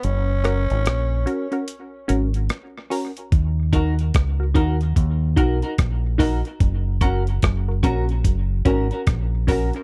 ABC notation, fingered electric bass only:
X:1
M:4/4
L:1/16
Q:"Swing 16ths" 1/4=73
K:Ebm
V:1 name="Fingered electric bass" clef=bass
G,,,3 A,,, B,,,2 z4 A,,,2 z4 | E,,4 D,,2 E,,2 E,,2 C,, z B,,,3 z | G,,,4 G,,,2 B,,,2 G,,,2 A,,, z B,,,3 z |]